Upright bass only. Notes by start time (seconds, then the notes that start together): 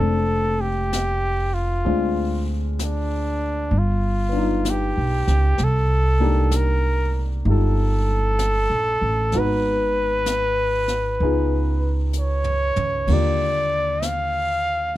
0.00 F1
1.86 D2
3.71 G1
4.97 B1
5.28 C#2
5.59 C2
7.45 G1
8.70 A#1
9.01 A1
9.33 G#1
11.20 C#2
12.77 C#2
13.08 D#2